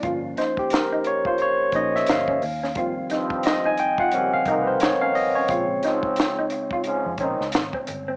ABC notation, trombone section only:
X:1
M:4/4
L:1/8
Q:"Swing 16ths" 1/4=88
K:Ebmix
V:1 name="Trombone section" clef=bass
z8 | z [G,,F,C]2 z [B,,G,D] [C,B,E] z2 | z [A,,F,C]2 z [A,,F,D] [E,CE] z2 |]